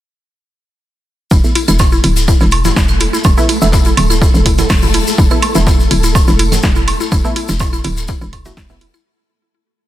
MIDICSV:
0, 0, Header, 1, 6, 480
1, 0, Start_track
1, 0, Tempo, 483871
1, 1302, Time_signature, 4, 2, 24, 8
1, 9799, End_track
2, 0, Start_track
2, 0, Title_t, "Synth arpeggio sound"
2, 0, Program_c, 0, 84
2, 1302, Note_on_c, 0, 64, 82
2, 1348, Note_off_c, 0, 64, 0
2, 1541, Note_on_c, 0, 64, 74
2, 1587, Note_off_c, 0, 64, 0
2, 1667, Note_on_c, 0, 64, 76
2, 1709, Note_off_c, 0, 64, 0
2, 1908, Note_on_c, 0, 64, 78
2, 1949, Note_off_c, 0, 64, 0
2, 2022, Note_on_c, 0, 64, 73
2, 2068, Note_off_c, 0, 64, 0
2, 2262, Note_on_c, 0, 64, 81
2, 2307, Note_off_c, 0, 64, 0
2, 2388, Note_on_c, 0, 64, 75
2, 2429, Note_off_c, 0, 64, 0
2, 2628, Note_on_c, 0, 64, 79
2, 2669, Note_off_c, 0, 64, 0
2, 2742, Note_on_c, 0, 64, 81
2, 2788, Note_off_c, 0, 64, 0
2, 2981, Note_on_c, 0, 64, 76
2, 3027, Note_off_c, 0, 64, 0
2, 3108, Note_on_c, 0, 64, 77
2, 3149, Note_off_c, 0, 64, 0
2, 3349, Note_on_c, 0, 64, 77
2, 3390, Note_off_c, 0, 64, 0
2, 3462, Note_on_c, 0, 64, 75
2, 3508, Note_off_c, 0, 64, 0
2, 3701, Note_on_c, 0, 64, 86
2, 3747, Note_off_c, 0, 64, 0
2, 3828, Note_on_c, 0, 64, 75
2, 3869, Note_off_c, 0, 64, 0
2, 4068, Note_on_c, 0, 64, 75
2, 4109, Note_off_c, 0, 64, 0
2, 4182, Note_on_c, 0, 64, 81
2, 4228, Note_off_c, 0, 64, 0
2, 4422, Note_on_c, 0, 64, 73
2, 4468, Note_off_c, 0, 64, 0
2, 4549, Note_on_c, 0, 64, 78
2, 4590, Note_off_c, 0, 64, 0
2, 4789, Note_on_c, 0, 64, 75
2, 4830, Note_off_c, 0, 64, 0
2, 4902, Note_on_c, 0, 64, 78
2, 4948, Note_off_c, 0, 64, 0
2, 5142, Note_on_c, 0, 64, 82
2, 5188, Note_off_c, 0, 64, 0
2, 5269, Note_on_c, 0, 64, 75
2, 5310, Note_off_c, 0, 64, 0
2, 5508, Note_on_c, 0, 64, 78
2, 5549, Note_off_c, 0, 64, 0
2, 5622, Note_on_c, 0, 64, 84
2, 5668, Note_off_c, 0, 64, 0
2, 5862, Note_on_c, 0, 64, 78
2, 5908, Note_off_c, 0, 64, 0
2, 5988, Note_on_c, 0, 64, 79
2, 6029, Note_off_c, 0, 64, 0
2, 6228, Note_on_c, 0, 64, 77
2, 6269, Note_off_c, 0, 64, 0
2, 6341, Note_on_c, 0, 64, 77
2, 6387, Note_off_c, 0, 64, 0
2, 6582, Note_on_c, 0, 64, 81
2, 6628, Note_off_c, 0, 64, 0
2, 6708, Note_on_c, 0, 64, 75
2, 6749, Note_off_c, 0, 64, 0
2, 6948, Note_on_c, 0, 64, 75
2, 6989, Note_off_c, 0, 64, 0
2, 7061, Note_on_c, 0, 64, 83
2, 7107, Note_off_c, 0, 64, 0
2, 7301, Note_on_c, 0, 64, 74
2, 7347, Note_off_c, 0, 64, 0
2, 7428, Note_on_c, 0, 64, 81
2, 7469, Note_off_c, 0, 64, 0
2, 7668, Note_on_c, 0, 64, 80
2, 7709, Note_off_c, 0, 64, 0
2, 7781, Note_on_c, 0, 64, 74
2, 7827, Note_off_c, 0, 64, 0
2, 8021, Note_on_c, 0, 64, 81
2, 8067, Note_off_c, 0, 64, 0
2, 8148, Note_on_c, 0, 64, 74
2, 8190, Note_off_c, 0, 64, 0
2, 8388, Note_on_c, 0, 66, 104
2, 8450, Note_off_c, 0, 66, 0
2, 8502, Note_on_c, 0, 64, 104
2, 8529, Note_off_c, 0, 64, 0
2, 8629, Note_on_c, 0, 64, 75
2, 8670, Note_off_c, 0, 64, 0
2, 8742, Note_on_c, 0, 64, 77
2, 8788, Note_off_c, 0, 64, 0
2, 8868, Note_on_c, 0, 64, 101
2, 8910, Note_off_c, 0, 64, 0
2, 9799, End_track
3, 0, Start_track
3, 0, Title_t, "Synth texture"
3, 0, Program_c, 1, 99
3, 1302, Note_on_c, 1, 57, 85
3, 1302, Note_on_c, 1, 69, 85
3, 8992, Note_off_c, 1, 57, 0
3, 8992, Note_off_c, 1, 69, 0
3, 9799, End_track
4, 0, Start_track
4, 0, Title_t, "Synth stab"
4, 0, Program_c, 2, 62
4, 1428, Note_on_c, 2, 57, 76
4, 1428, Note_on_c, 2, 59, 66
4, 1428, Note_on_c, 2, 64, 80
4, 1492, Note_off_c, 2, 57, 0
4, 1492, Note_off_c, 2, 59, 0
4, 1492, Note_off_c, 2, 64, 0
4, 1668, Note_on_c, 2, 57, 81
4, 1668, Note_on_c, 2, 59, 75
4, 1668, Note_on_c, 2, 64, 90
4, 1732, Note_off_c, 2, 57, 0
4, 1732, Note_off_c, 2, 59, 0
4, 1732, Note_off_c, 2, 64, 0
4, 3348, Note_on_c, 2, 59, 80
4, 3348, Note_on_c, 2, 64, 96
4, 3349, Note_on_c, 2, 57, 88
4, 3450, Note_off_c, 2, 57, 0
4, 3450, Note_off_c, 2, 59, 0
4, 3450, Note_off_c, 2, 64, 0
4, 3588, Note_on_c, 2, 57, 89
4, 3589, Note_on_c, 2, 59, 79
4, 3589, Note_on_c, 2, 64, 98
4, 3652, Note_off_c, 2, 57, 0
4, 3652, Note_off_c, 2, 59, 0
4, 3652, Note_off_c, 2, 64, 0
4, 5268, Note_on_c, 2, 57, 77
4, 5268, Note_on_c, 2, 59, 69
4, 5268, Note_on_c, 2, 64, 82
4, 5332, Note_off_c, 2, 57, 0
4, 5332, Note_off_c, 2, 59, 0
4, 5332, Note_off_c, 2, 64, 0
4, 5508, Note_on_c, 2, 57, 82
4, 5508, Note_on_c, 2, 59, 76
4, 5508, Note_on_c, 2, 64, 94
4, 5572, Note_off_c, 2, 57, 0
4, 5572, Note_off_c, 2, 59, 0
4, 5572, Note_off_c, 2, 64, 0
4, 7188, Note_on_c, 2, 57, 87
4, 7188, Note_on_c, 2, 59, 79
4, 7188, Note_on_c, 2, 64, 99
4, 7290, Note_off_c, 2, 57, 0
4, 7290, Note_off_c, 2, 59, 0
4, 7290, Note_off_c, 2, 64, 0
4, 8388, Note_on_c, 2, 57, 76
4, 8388, Note_on_c, 2, 59, 71
4, 8388, Note_on_c, 2, 64, 86
4, 8452, Note_off_c, 2, 57, 0
4, 8452, Note_off_c, 2, 59, 0
4, 8452, Note_off_c, 2, 64, 0
4, 8628, Note_on_c, 2, 59, 82
4, 8629, Note_on_c, 2, 57, 88
4, 8629, Note_on_c, 2, 64, 95
4, 8692, Note_off_c, 2, 57, 0
4, 8692, Note_off_c, 2, 59, 0
4, 8692, Note_off_c, 2, 64, 0
4, 9799, End_track
5, 0, Start_track
5, 0, Title_t, "FM bass"
5, 0, Program_c, 3, 39
5, 1302, Note_on_c, 3, 28, 100
5, 1394, Note_off_c, 3, 28, 0
5, 1668, Note_on_c, 3, 28, 89
5, 1973, Note_off_c, 3, 28, 0
5, 2022, Note_on_c, 3, 26, 83
5, 2334, Note_off_c, 3, 26, 0
5, 2388, Note_on_c, 3, 28, 102
5, 2693, Note_off_c, 3, 28, 0
5, 2742, Note_on_c, 3, 28, 94
5, 3054, Note_off_c, 3, 28, 0
5, 3222, Note_on_c, 3, 28, 95
5, 3314, Note_off_c, 3, 28, 0
5, 3588, Note_on_c, 3, 28, 88
5, 3893, Note_off_c, 3, 28, 0
5, 3942, Note_on_c, 3, 26, 84
5, 4254, Note_off_c, 3, 26, 0
5, 4308, Note_on_c, 3, 28, 102
5, 4613, Note_off_c, 3, 28, 0
5, 4662, Note_on_c, 3, 28, 96
5, 4974, Note_off_c, 3, 28, 0
5, 5141, Note_on_c, 3, 28, 97
5, 5234, Note_off_c, 3, 28, 0
5, 5508, Note_on_c, 3, 28, 87
5, 5813, Note_off_c, 3, 28, 0
5, 5861, Note_on_c, 3, 26, 86
5, 6174, Note_off_c, 3, 26, 0
5, 6228, Note_on_c, 3, 28, 102
5, 6533, Note_off_c, 3, 28, 0
5, 6581, Note_on_c, 3, 28, 97
5, 6894, Note_off_c, 3, 28, 0
5, 7062, Note_on_c, 3, 28, 99
5, 7154, Note_off_c, 3, 28, 0
5, 7428, Note_on_c, 3, 28, 86
5, 7733, Note_off_c, 3, 28, 0
5, 7782, Note_on_c, 3, 26, 86
5, 8094, Note_off_c, 3, 26, 0
5, 8148, Note_on_c, 3, 28, 104
5, 8453, Note_off_c, 3, 28, 0
5, 8502, Note_on_c, 3, 28, 99
5, 8814, Note_off_c, 3, 28, 0
5, 9799, End_track
6, 0, Start_track
6, 0, Title_t, "Drums"
6, 1302, Note_on_c, 9, 36, 119
6, 1302, Note_on_c, 9, 70, 61
6, 1305, Note_on_c, 9, 54, 81
6, 1401, Note_off_c, 9, 36, 0
6, 1401, Note_off_c, 9, 70, 0
6, 1405, Note_off_c, 9, 54, 0
6, 1427, Note_on_c, 9, 70, 39
6, 1526, Note_off_c, 9, 70, 0
6, 1542, Note_on_c, 9, 46, 91
6, 1544, Note_on_c, 9, 54, 63
6, 1641, Note_off_c, 9, 46, 0
6, 1643, Note_off_c, 9, 54, 0
6, 1666, Note_on_c, 9, 42, 44
6, 1668, Note_on_c, 9, 75, 64
6, 1673, Note_on_c, 9, 70, 72
6, 1765, Note_off_c, 9, 42, 0
6, 1767, Note_off_c, 9, 75, 0
6, 1772, Note_off_c, 9, 70, 0
6, 1777, Note_on_c, 9, 54, 88
6, 1777, Note_on_c, 9, 70, 61
6, 1782, Note_on_c, 9, 36, 113
6, 1782, Note_on_c, 9, 38, 114
6, 1782, Note_on_c, 9, 77, 75
6, 1876, Note_off_c, 9, 54, 0
6, 1876, Note_off_c, 9, 70, 0
6, 1881, Note_off_c, 9, 36, 0
6, 1881, Note_off_c, 9, 38, 0
6, 1881, Note_off_c, 9, 77, 0
6, 1904, Note_on_c, 9, 70, 37
6, 2004, Note_off_c, 9, 70, 0
6, 2017, Note_on_c, 9, 54, 64
6, 2022, Note_on_c, 9, 46, 88
6, 2117, Note_off_c, 9, 54, 0
6, 2121, Note_off_c, 9, 46, 0
6, 2147, Note_on_c, 9, 42, 46
6, 2148, Note_on_c, 9, 70, 74
6, 2246, Note_off_c, 9, 42, 0
6, 2247, Note_off_c, 9, 70, 0
6, 2261, Note_on_c, 9, 54, 85
6, 2261, Note_on_c, 9, 75, 63
6, 2262, Note_on_c, 9, 36, 114
6, 2264, Note_on_c, 9, 70, 66
6, 2360, Note_off_c, 9, 54, 0
6, 2361, Note_off_c, 9, 36, 0
6, 2361, Note_off_c, 9, 75, 0
6, 2363, Note_off_c, 9, 70, 0
6, 2385, Note_on_c, 9, 70, 39
6, 2387, Note_on_c, 9, 38, 45
6, 2484, Note_off_c, 9, 70, 0
6, 2486, Note_off_c, 9, 38, 0
6, 2493, Note_on_c, 9, 54, 61
6, 2502, Note_on_c, 9, 46, 89
6, 2502, Note_on_c, 9, 77, 78
6, 2592, Note_off_c, 9, 54, 0
6, 2601, Note_off_c, 9, 46, 0
6, 2601, Note_off_c, 9, 77, 0
6, 2625, Note_on_c, 9, 70, 76
6, 2628, Note_on_c, 9, 46, 37
6, 2628, Note_on_c, 9, 64, 82
6, 2630, Note_on_c, 9, 38, 51
6, 2724, Note_off_c, 9, 70, 0
6, 2727, Note_off_c, 9, 64, 0
6, 2728, Note_off_c, 9, 46, 0
6, 2729, Note_off_c, 9, 38, 0
6, 2742, Note_on_c, 9, 36, 120
6, 2742, Note_on_c, 9, 38, 108
6, 2744, Note_on_c, 9, 54, 90
6, 2748, Note_on_c, 9, 70, 69
6, 2749, Note_off_c, 9, 38, 0
6, 2749, Note_on_c, 9, 38, 118
6, 2841, Note_off_c, 9, 36, 0
6, 2843, Note_off_c, 9, 54, 0
6, 2847, Note_off_c, 9, 70, 0
6, 2848, Note_off_c, 9, 38, 0
6, 2859, Note_on_c, 9, 70, 42
6, 2868, Note_on_c, 9, 75, 65
6, 2958, Note_off_c, 9, 70, 0
6, 2967, Note_off_c, 9, 75, 0
6, 2977, Note_on_c, 9, 54, 67
6, 2982, Note_on_c, 9, 46, 91
6, 3076, Note_off_c, 9, 54, 0
6, 3081, Note_off_c, 9, 46, 0
6, 3113, Note_on_c, 9, 70, 69
6, 3213, Note_off_c, 9, 70, 0
6, 3214, Note_on_c, 9, 70, 58
6, 3220, Note_on_c, 9, 54, 87
6, 3221, Note_on_c, 9, 77, 81
6, 3222, Note_on_c, 9, 36, 123
6, 3313, Note_off_c, 9, 70, 0
6, 3319, Note_off_c, 9, 54, 0
6, 3321, Note_off_c, 9, 36, 0
6, 3321, Note_off_c, 9, 77, 0
6, 3348, Note_on_c, 9, 70, 44
6, 3448, Note_off_c, 9, 70, 0
6, 3461, Note_on_c, 9, 75, 65
6, 3462, Note_on_c, 9, 46, 94
6, 3467, Note_on_c, 9, 54, 67
6, 3560, Note_off_c, 9, 75, 0
6, 3561, Note_off_c, 9, 46, 0
6, 3566, Note_off_c, 9, 54, 0
6, 3586, Note_on_c, 9, 70, 85
6, 3685, Note_off_c, 9, 70, 0
6, 3694, Note_on_c, 9, 38, 113
6, 3702, Note_on_c, 9, 36, 115
6, 3702, Note_on_c, 9, 70, 72
6, 3703, Note_on_c, 9, 54, 83
6, 3793, Note_off_c, 9, 38, 0
6, 3801, Note_off_c, 9, 36, 0
6, 3801, Note_off_c, 9, 70, 0
6, 3802, Note_off_c, 9, 54, 0
6, 3818, Note_on_c, 9, 42, 42
6, 3832, Note_on_c, 9, 70, 43
6, 3917, Note_off_c, 9, 42, 0
6, 3931, Note_off_c, 9, 70, 0
6, 3941, Note_on_c, 9, 77, 80
6, 3942, Note_on_c, 9, 46, 90
6, 3948, Note_on_c, 9, 54, 65
6, 4040, Note_off_c, 9, 77, 0
6, 4041, Note_off_c, 9, 46, 0
6, 4047, Note_off_c, 9, 54, 0
6, 4067, Note_on_c, 9, 75, 63
6, 4069, Note_on_c, 9, 42, 45
6, 4076, Note_on_c, 9, 70, 80
6, 4166, Note_off_c, 9, 75, 0
6, 4168, Note_off_c, 9, 42, 0
6, 4175, Note_off_c, 9, 70, 0
6, 4181, Note_on_c, 9, 36, 118
6, 4184, Note_on_c, 9, 54, 84
6, 4190, Note_on_c, 9, 70, 64
6, 4281, Note_off_c, 9, 36, 0
6, 4283, Note_off_c, 9, 54, 0
6, 4289, Note_off_c, 9, 70, 0
6, 4310, Note_on_c, 9, 70, 40
6, 4409, Note_off_c, 9, 70, 0
6, 4421, Note_on_c, 9, 54, 71
6, 4422, Note_on_c, 9, 36, 62
6, 4422, Note_on_c, 9, 46, 93
6, 4521, Note_off_c, 9, 36, 0
6, 4521, Note_off_c, 9, 46, 0
6, 4521, Note_off_c, 9, 54, 0
6, 4546, Note_on_c, 9, 70, 71
6, 4547, Note_on_c, 9, 64, 85
6, 4548, Note_on_c, 9, 46, 39
6, 4645, Note_off_c, 9, 70, 0
6, 4646, Note_off_c, 9, 64, 0
6, 4647, Note_off_c, 9, 46, 0
6, 4658, Note_on_c, 9, 70, 70
6, 4659, Note_on_c, 9, 38, 106
6, 4661, Note_on_c, 9, 75, 63
6, 4661, Note_on_c, 9, 77, 80
6, 4662, Note_off_c, 9, 38, 0
6, 4662, Note_on_c, 9, 36, 122
6, 4662, Note_on_c, 9, 38, 106
6, 4665, Note_on_c, 9, 46, 89
6, 4758, Note_off_c, 9, 70, 0
6, 4761, Note_off_c, 9, 36, 0
6, 4761, Note_off_c, 9, 38, 0
6, 4761, Note_off_c, 9, 75, 0
6, 4761, Note_off_c, 9, 77, 0
6, 4764, Note_off_c, 9, 46, 0
6, 4784, Note_on_c, 9, 70, 41
6, 4787, Note_on_c, 9, 64, 89
6, 4792, Note_on_c, 9, 38, 38
6, 4883, Note_off_c, 9, 70, 0
6, 4887, Note_off_c, 9, 64, 0
6, 4891, Note_off_c, 9, 38, 0
6, 4897, Note_on_c, 9, 54, 71
6, 4902, Note_on_c, 9, 46, 93
6, 4996, Note_off_c, 9, 54, 0
6, 5001, Note_off_c, 9, 46, 0
6, 5033, Note_on_c, 9, 70, 76
6, 5132, Note_off_c, 9, 70, 0
6, 5142, Note_on_c, 9, 36, 127
6, 5142, Note_on_c, 9, 70, 71
6, 5151, Note_on_c, 9, 54, 90
6, 5241, Note_off_c, 9, 36, 0
6, 5241, Note_off_c, 9, 70, 0
6, 5250, Note_off_c, 9, 54, 0
6, 5265, Note_on_c, 9, 70, 42
6, 5268, Note_on_c, 9, 75, 60
6, 5364, Note_off_c, 9, 70, 0
6, 5367, Note_off_c, 9, 75, 0
6, 5381, Note_on_c, 9, 77, 82
6, 5382, Note_on_c, 9, 46, 96
6, 5385, Note_on_c, 9, 54, 65
6, 5480, Note_off_c, 9, 77, 0
6, 5481, Note_off_c, 9, 46, 0
6, 5484, Note_off_c, 9, 54, 0
6, 5503, Note_on_c, 9, 42, 39
6, 5508, Note_on_c, 9, 70, 76
6, 5602, Note_off_c, 9, 42, 0
6, 5607, Note_off_c, 9, 70, 0
6, 5620, Note_on_c, 9, 54, 88
6, 5622, Note_on_c, 9, 36, 123
6, 5627, Note_on_c, 9, 38, 117
6, 5632, Note_on_c, 9, 70, 68
6, 5719, Note_off_c, 9, 54, 0
6, 5721, Note_off_c, 9, 36, 0
6, 5726, Note_off_c, 9, 38, 0
6, 5731, Note_off_c, 9, 70, 0
6, 5752, Note_on_c, 9, 70, 40
6, 5851, Note_off_c, 9, 70, 0
6, 5861, Note_on_c, 9, 75, 64
6, 5862, Note_on_c, 9, 46, 95
6, 5871, Note_on_c, 9, 54, 67
6, 5960, Note_off_c, 9, 75, 0
6, 5961, Note_off_c, 9, 46, 0
6, 5970, Note_off_c, 9, 54, 0
6, 5984, Note_on_c, 9, 42, 39
6, 5989, Note_on_c, 9, 70, 82
6, 6083, Note_off_c, 9, 42, 0
6, 6088, Note_off_c, 9, 70, 0
6, 6101, Note_on_c, 9, 36, 125
6, 6101, Note_on_c, 9, 54, 89
6, 6101, Note_on_c, 9, 77, 81
6, 6104, Note_on_c, 9, 70, 66
6, 6200, Note_off_c, 9, 54, 0
6, 6200, Note_off_c, 9, 77, 0
6, 6201, Note_off_c, 9, 36, 0
6, 6203, Note_off_c, 9, 70, 0
6, 6226, Note_on_c, 9, 70, 42
6, 6227, Note_on_c, 9, 38, 44
6, 6325, Note_off_c, 9, 70, 0
6, 6327, Note_off_c, 9, 38, 0
6, 6342, Note_on_c, 9, 46, 98
6, 6342, Note_on_c, 9, 54, 63
6, 6441, Note_off_c, 9, 46, 0
6, 6441, Note_off_c, 9, 54, 0
6, 6468, Note_on_c, 9, 64, 83
6, 6468, Note_on_c, 9, 75, 64
6, 6469, Note_on_c, 9, 46, 39
6, 6473, Note_on_c, 9, 38, 48
6, 6473, Note_on_c, 9, 70, 78
6, 6567, Note_off_c, 9, 64, 0
6, 6567, Note_off_c, 9, 75, 0
6, 6568, Note_off_c, 9, 46, 0
6, 6572, Note_off_c, 9, 38, 0
6, 6573, Note_off_c, 9, 70, 0
6, 6574, Note_on_c, 9, 70, 67
6, 6582, Note_on_c, 9, 36, 125
6, 6582, Note_on_c, 9, 38, 106
6, 6587, Note_on_c, 9, 54, 80
6, 6674, Note_off_c, 9, 70, 0
6, 6681, Note_off_c, 9, 36, 0
6, 6681, Note_off_c, 9, 38, 0
6, 6687, Note_off_c, 9, 54, 0
6, 6704, Note_on_c, 9, 70, 44
6, 6803, Note_off_c, 9, 70, 0
6, 6819, Note_on_c, 9, 54, 63
6, 6821, Note_on_c, 9, 77, 83
6, 6822, Note_on_c, 9, 46, 95
6, 6918, Note_off_c, 9, 54, 0
6, 6921, Note_off_c, 9, 46, 0
6, 6921, Note_off_c, 9, 77, 0
6, 6948, Note_on_c, 9, 70, 75
6, 7047, Note_off_c, 9, 70, 0
6, 7061, Note_on_c, 9, 36, 123
6, 7061, Note_on_c, 9, 54, 80
6, 7062, Note_on_c, 9, 75, 64
6, 7063, Note_on_c, 9, 70, 70
6, 7161, Note_off_c, 9, 36, 0
6, 7161, Note_off_c, 9, 54, 0
6, 7161, Note_off_c, 9, 75, 0
6, 7162, Note_off_c, 9, 70, 0
6, 7188, Note_on_c, 9, 70, 41
6, 7287, Note_off_c, 9, 70, 0
6, 7302, Note_on_c, 9, 46, 97
6, 7303, Note_on_c, 9, 54, 70
6, 7401, Note_off_c, 9, 46, 0
6, 7403, Note_off_c, 9, 54, 0
6, 7424, Note_on_c, 9, 70, 88
6, 7523, Note_off_c, 9, 70, 0
6, 7532, Note_on_c, 9, 54, 88
6, 7541, Note_on_c, 9, 38, 113
6, 7542, Note_on_c, 9, 36, 117
6, 7542, Note_on_c, 9, 77, 78
6, 7545, Note_on_c, 9, 70, 74
6, 7632, Note_off_c, 9, 54, 0
6, 7640, Note_off_c, 9, 38, 0
6, 7641, Note_off_c, 9, 36, 0
6, 7641, Note_off_c, 9, 77, 0
6, 7644, Note_off_c, 9, 70, 0
6, 7668, Note_on_c, 9, 75, 63
6, 7671, Note_on_c, 9, 70, 43
6, 7672, Note_on_c, 9, 42, 46
6, 7767, Note_off_c, 9, 75, 0
6, 7770, Note_off_c, 9, 70, 0
6, 7771, Note_off_c, 9, 42, 0
6, 7777, Note_on_c, 9, 54, 67
6, 7782, Note_on_c, 9, 46, 92
6, 7876, Note_off_c, 9, 54, 0
6, 7881, Note_off_c, 9, 46, 0
6, 7907, Note_on_c, 9, 70, 76
6, 7916, Note_on_c, 9, 42, 39
6, 8006, Note_off_c, 9, 70, 0
6, 8015, Note_off_c, 9, 42, 0
6, 8015, Note_on_c, 9, 70, 67
6, 8020, Note_on_c, 9, 54, 80
6, 8022, Note_on_c, 9, 36, 122
6, 8114, Note_off_c, 9, 70, 0
6, 8119, Note_off_c, 9, 54, 0
6, 8121, Note_off_c, 9, 36, 0
6, 8147, Note_on_c, 9, 70, 42
6, 8246, Note_off_c, 9, 70, 0
6, 8260, Note_on_c, 9, 54, 72
6, 8262, Note_on_c, 9, 36, 62
6, 8262, Note_on_c, 9, 46, 96
6, 8262, Note_on_c, 9, 75, 67
6, 8262, Note_on_c, 9, 77, 81
6, 8359, Note_off_c, 9, 54, 0
6, 8361, Note_off_c, 9, 36, 0
6, 8361, Note_off_c, 9, 75, 0
6, 8361, Note_off_c, 9, 77, 0
6, 8362, Note_off_c, 9, 46, 0
6, 8385, Note_on_c, 9, 70, 79
6, 8389, Note_on_c, 9, 46, 39
6, 8389, Note_on_c, 9, 64, 80
6, 8484, Note_off_c, 9, 70, 0
6, 8488, Note_off_c, 9, 64, 0
6, 8489, Note_off_c, 9, 46, 0
6, 8502, Note_on_c, 9, 36, 127
6, 8502, Note_on_c, 9, 38, 123
6, 8503, Note_off_c, 9, 38, 0
6, 8503, Note_on_c, 9, 38, 101
6, 8506, Note_on_c, 9, 46, 78
6, 8506, Note_on_c, 9, 70, 63
6, 8601, Note_off_c, 9, 36, 0
6, 8602, Note_off_c, 9, 38, 0
6, 8605, Note_off_c, 9, 46, 0
6, 8605, Note_off_c, 9, 70, 0
6, 8624, Note_on_c, 9, 70, 38
6, 8627, Note_on_c, 9, 38, 43
6, 8628, Note_on_c, 9, 64, 83
6, 8723, Note_off_c, 9, 70, 0
6, 8726, Note_off_c, 9, 38, 0
6, 8727, Note_off_c, 9, 64, 0
6, 8738, Note_on_c, 9, 54, 70
6, 8742, Note_on_c, 9, 46, 91
6, 8837, Note_off_c, 9, 54, 0
6, 8841, Note_off_c, 9, 46, 0
6, 8868, Note_on_c, 9, 70, 78
6, 8868, Note_on_c, 9, 75, 63
6, 8967, Note_off_c, 9, 70, 0
6, 8967, Note_off_c, 9, 75, 0
6, 9799, End_track
0, 0, End_of_file